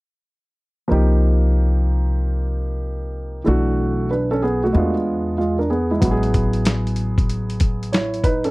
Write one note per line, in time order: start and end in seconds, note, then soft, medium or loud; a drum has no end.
0.88 3.42 C2 medium
0.88 3.41 F3 medium
0.88 3.41 A#3 medium
0.88 3.42 D#4 medium
0.92 3.43 G4 medium
3.44 4.70 B1 medium
3.44 4.70 E3 medium
3.44 4.08 A3 medium
3.44 4.09 D4 medium
3.44 4.10 F#4 medium
4.11 4.30 D4 soft
4.11 4.30 B4 medium
4.31 4.42 C#4 medium
4.31 4.42 A4 medium
4.43 4.62 B3 medium
4.43 4.62 G#4 medium
4.64 4.94 A3 medium
4.64 4.93 F#4 medium
4.73 5.98 E2 medium
4.73 5.36 G#3 medium
4.73 5.37 B3 medium
4.73 5.37 D4 soft
4.77 5.37 F4 medium
5.38 5.58 G#3 medium
5.38 5.57 F4 medium
5.59 5.70 D4 soft
5.59 5.69 A#4 medium
5.70 5.90 B3 medium
5.70 5.89 G#4 medium
5.91 6.21 G#3 medium
5.91 6.01 E4 medium
6.00 8.51 A1 medium
6.00 8.51 F#3 medium
6.00 8.51 B3 medium
6.00 7.90 E4 medium
6.00 kick medium
6.00 closed hi-hat medium
6.04 6.11 F#4 medium
6.11 7.94 G#4 medium
6.23 closed hi-hat soft
6.34 kick medium
6.34 closed hi-hat medium
6.53 closed hi-hat soft
6.65 snare loud
6.65 closed hi-hat medium
6.87 closed hi-hat soft
6.96 closed hi-hat medium
7.18 kick medium
7.18 closed hi-hat soft
7.30 closed hi-hat medium
7.50 closed hi-hat soft
7.60 kick medium
7.60 closed hi-hat medium
7.83 closed hi-hat medium
7.93 8.24 E4 soft
7.93 8.23 C#5 medium
7.93 snare medium
7.93 closed hi-hat medium
8.14 closed hi-hat soft
8.24 8.44 D#4 medium
8.24 8.44 B4 medium
8.24 kick medium
8.24 closed hi-hat medium
8.44 8.51 C#4 medium
8.44 8.51 A4 medium
8.44 closed hi-hat medium